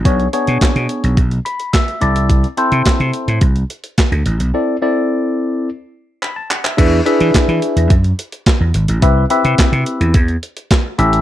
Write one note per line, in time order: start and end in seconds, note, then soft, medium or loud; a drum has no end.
0.05 0.26 B1 loud
0.05 0.27 B3 medium
0.05 0.27 D4 medium
0.05 0.27 G#4 medium
0.05 0.27 C#5 medium
0.05 kick loud
0.05 closed hi-hat medium
0.20 closed hi-hat soft
0.33 1.20 B3 medium
0.33 1.20 D4 medium
0.33 1.20 G#4 medium
0.33 1.20 C#5 medium
0.33 closed hi-hat medium
0.47 0.58 B2 medium
0.47 closed hi-hat soft
0.61 muted slap bass stroke medium
0.61 kick loud
0.61 snare loud
0.61 clap medium
0.61 closed hi-hat medium
0.76 0.86 B2 loud
0.76 closed hi-hat soft
0.89 closed hi-hat medium
1.04 1.14 B1 medium
1.04 closed hi-hat medium
1.17 1.38 B1 loud
1.17 kick loud
1.17 closed hi-hat medium
1.31 closed hi-hat soft
1.45 1.71 B5 medium
1.45 closed hi-hat medium
1.60 closed hi-hat soft
1.73 2.25 E5 medium
1.73 kick loud
1.73 snare loud
1.73 clap medium
1.73 closed hi-hat medium
1.88 closed hi-hat soft
2.01 2.44 C2 medium
2.01 2.46 C4 medium
2.01 2.46 E4 medium
2.01 2.46 A4 medium
2.01 2.46 D5 loud
2.01 closed hi-hat medium
2.16 closed hi-hat medium
2.30 kick loud
2.30 closed hi-hat medium
2.44 closed hi-hat soft
2.57 3.44 C4 medium
2.57 3.44 E4 medium
2.57 3.44 A4 medium
2.57 3.44 C5 loud
2.57 closed hi-hat medium
2.72 2.82 C3 medium
2.72 closed hi-hat soft
2.85 muted slap bass stroke soft
2.85 kick loud
2.85 snare loud
2.85 clap medium
2.85 closed hi-hat loud
3.00 3.10 C3 loud
3.00 closed hi-hat soft
3.13 closed hi-hat medium
3.28 3.38 A2 medium
3.28 closed hi-hat medium
3.41 3.63 C2 loud
3.41 kick loud
3.41 closed hi-hat medium
3.56 closed hi-hat soft
3.70 closed hi-hat medium
3.84 closed hi-hat medium
3.98 kick loud
3.98 snare loud
3.98 clap medium
3.98 closed hi-hat medium
4.12 4.22 D2 medium
4.12 closed hi-hat soft
4.26 4.36 A1 medium
4.26 closed hi-hat medium
4.40 4.51 B1 loud
4.40 closed hi-hat medium
4.54 4.75 C4 medium
4.54 4.76 E4 medium
4.54 4.76 A4 medium
4.54 4.76 D5 medium
4.82 5.68 C4 medium
4.82 5.69 E4 medium
4.82 5.69 A4 medium
4.82 5.69 D5 medium
6.22 6.35 B5 medium
6.22 clap medium
6.36 6.50 A5 medium
6.50 6.63 F#5 medium
6.50 clap medium
6.64 6.77 E5 medium
6.64 clap medium
6.77 6.99 E2 loud
6.77 6.99 D4 medium
6.77 7.00 E4 medium
6.77 7.00 G#4 medium
6.77 7.00 B4 medium
6.77 7.00 E5 medium
6.77 kick loud
6.77 closed hi-hat medium
6.77 crash medium
7.05 7.92 D4 medium
7.05 7.93 E4 medium
7.05 7.93 G#4 medium
7.05 7.93 B4 medium
7.05 7.93 E5 medium
7.05 closed hi-hat medium
7.20 7.31 E3 loud
7.20 closed hi-hat soft
7.34 muted slap bass stroke medium
7.34 kick loud
7.34 snare loud
7.34 clap loud
7.34 closed hi-hat loud
7.48 7.59 E3 loud
7.48 closed hi-hat soft
7.62 closed hi-hat medium
7.76 7.87 E2 medium
7.76 closed hi-hat medium
7.90 8.12 F#2 medium
7.90 kick loud
7.90 closed hi-hat medium
8.04 closed hi-hat soft
8.19 closed hi-hat medium
8.32 closed hi-hat medium
8.46 kick loud
8.46 snare loud
8.46 clap medium
8.46 closed hi-hat medium
8.60 8.71 E2 medium
8.74 8.85 G#1 loud
8.74 closed hi-hat medium
8.88 8.99 A1 loud
8.88 closed hi-hat medium
9.02 9.24 C2 loud
9.02 9.24 C4 medium
9.02 9.24 E4 medium
9.02 9.24 G4 medium
9.02 9.24 B4 medium
9.02 9.24 E5 medium
9.02 kick loud
9.02 closed hi-hat medium
9.30 10.17 C4 medium
9.30 10.17 E4 medium
9.30 10.17 G4 medium
9.30 10.17 B4 medium
9.30 10.17 E5 loud
9.30 closed hi-hat medium
9.45 9.55 C3 loud
9.45 closed hi-hat soft
9.58 muted slap bass stroke medium
9.58 kick loud
9.58 snare loud
9.58 clap loud
9.58 closed hi-hat medium
9.72 9.83 C3 medium
9.72 closed hi-hat soft
9.86 closed hi-hat medium
10.01 10.11 E2 medium
10.01 closed hi-hat medium
10.14 10.36 E2 medium
10.14 kick loud
10.14 closed hi-hat loud
10.28 closed hi-hat soft
10.43 closed hi-hat medium
10.57 closed hi-hat medium
10.71 kick loud
10.71 snare loud
10.71 clap loud
10.71 closed hi-hat medium
10.98 11.21 A1 loud
10.98 11.21 C#4 loud
10.98 11.21 E4 medium
10.98 11.21 G4 medium
10.98 11.21 A4 medium
10.98 11.21 E5 loud
10.98 closed hi-hat medium
11.13 closed hi-hat medium